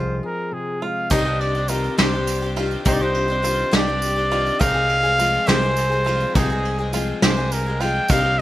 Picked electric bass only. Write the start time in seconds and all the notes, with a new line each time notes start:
Already playing: C2
1.10 C2
1.99 C2
2.86 C2
3.73 C2
4.61 C2
5.48 C2
6.35 C2
7.22 C2
8.09 C2